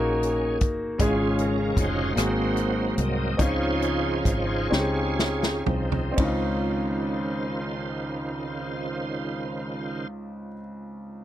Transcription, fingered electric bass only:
0.00 0.61 A#1 medium
0.61 0.97 G1 medium
1.00 1.73 G#1 medium
1.77 2.13 F1 medium
2.16 2.93 G#1 medium
2.98 3.36 C2 medium
3.39 4.22 C#2 medium
4.25 4.67 G#1 medium
4.72 5.63 C#2 medium
5.67 6.14 C2 medium
6.18 10.53 C#2 medium

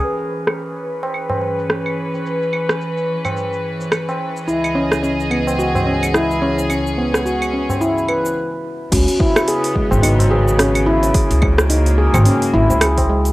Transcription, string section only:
0.04 8.33 E3 medium
0.04 4.44 C#4 medium
0.04 4.44 B4 medium
4.47 8.33 C#2 medium
4.47 8.32 G#4 medium
4.47 6.68 D#5 medium
6.70 8.35 C#4 medium
8.91 13.32 C#3 medium
8.91 11.12 B3 medium
11.15 13.33 A#3 medium

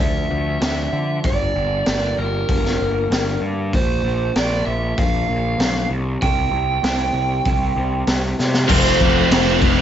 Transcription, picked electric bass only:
0.00 0.25 D2 medium
0.31 0.56 D2 medium
0.61 0.87 D2 medium
0.92 1.19 D3 medium
1.24 1.50 G1 medium
1.55 1.81 G1 medium
1.87 2.12 G1 medium
2.17 2.43 G1 medium
2.49 2.75 G1 medium
2.80 3.06 G1 medium
3.10 3.36 G1 medium
3.41 3.75 G2 medium
3.73 3.99 A#1 medium
4.03 4.29 A#1 medium
4.36 4.61 A#1 medium
4.66 4.92 A#1 medium
4.98 5.24 A#1 medium
5.28 5.54 A#1 medium
5.58 5.85 B1 medium
5.89 6.16 C2 medium
6.22 6.48 C2 medium
6.51 6.77 C2 medium
6.83 7.09 C2 medium
7.13 7.39 C2 medium
7.45 7.71 C2 medium
7.76 8.02 C2 medium
8.07 8.33 C2 medium
8.39 8.65 C3 medium
8.69 8.92 F1 loud
9.01 9.23 F1 medium
9.31 9.75 F1 loud

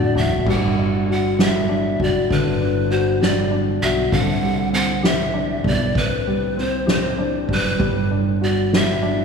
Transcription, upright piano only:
0.00 0.43 A2 medium
0.00 0.16 D4 medium
0.00 0.49 F#4 medium
0.16 0.46 D4 medium
0.46 1.37 G3 medium
0.78 1.68 D4 soft
1.09 1.99 F#4 medium
1.39 2.57 G3 medium
1.69 2.59 D4 medium
2.00 2.89 F#4 medium
2.30 4.08 D3 medium
2.61 3.50 D4 soft
2.91 3.81 F#4 medium
3.21 4.09 G3 medium
3.51 4.10 D4 medium
3.83 4.12 F#4 medium
4.12 5.91 D3 medium
4.43 5.61 G3 soft
4.73 5.91 C4 medium
5.03 6.22 G4 medium
5.34 6.53 D4 medium
5.64 6.26 G3 soft
6.27 7.46 G3 medium
6.57 7.76 C4 medium
6.87 7.76 G4 medium
7.19 7.78 D4 medium
7.50 7.77 G3 medium
7.79 8.72 G3 medium
8.11 9.01 D4 soft
8.41 9.25 F#4 soft
8.74 9.25 G3 medium
9.03 9.25 D4 medium

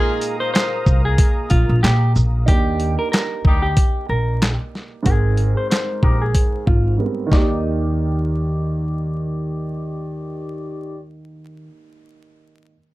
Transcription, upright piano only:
0.00 2.10 A#2 medium
0.00 2.11 G#3 medium
0.00 2.12 D#4 medium
0.00 2.16 A#4 medium
2.46 5.02 A#3 medium
2.46 5.03 D4 medium
2.46 5.01 D#4 medium
2.51 5.03 G4 medium
5.03 6.94 G#2 medium
5.03 6.95 G#3 medium
5.03 6.96 C4 medium
5.08 6.96 A#4 medium
6.98 7.31 G#2 soft
6.98 7.31 G3 soft
6.98 7.07 B3 soft
6.98 7.32 A#4 medium
7.06 7.35 C4 soft
7.27 11.65 D#3 medium
7.27 11.67 A#3 medium
7.33 11.71 G4 medium
7.33 11.69 D5 medium

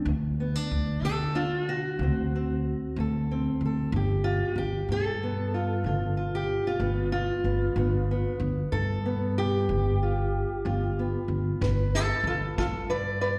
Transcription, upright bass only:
0.05 0.55 D2 loud
0.71 0.96 D2 medium
1.02 2.01 D3 medium
1.99 2.73 D2 medium
2.96 3.45 D2 medium
3.61 3.85 D2 medium
3.92 4.41 G1 loud
4.56 4.81 G1 medium
4.89 5.86 G2 medium
5.84 6.58 G1 medium
6.80 7.29 G1 medium
7.44 7.69 G1 medium
7.76 8.25 G1 loud
8.40 8.65 G1 loud
8.72 9.71 G2 medium
9.69 10.43 G1 medium
10.65 11.15 G1 medium
11.28 11.54 G1 medium
11.61 12.11 G1 loud
12.24 12.49 G1 medium
12.58 13.39 G2 medium

